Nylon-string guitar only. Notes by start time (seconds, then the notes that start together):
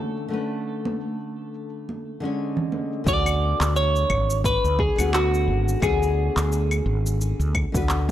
Already playing: D3 A3 C#4 C#5
0.28 D3 A3 C#4
0.34 B4
2.20 D3 G#3 C#4
2.25 C#5
3.04 D3 B3 F#4
3.09 G#4
4.96 D3 B3 F#4
5.01 B4
5.80 D3 B3 F#4
5.85 G#4
7.72 D3 B3 F#4
7.77 B4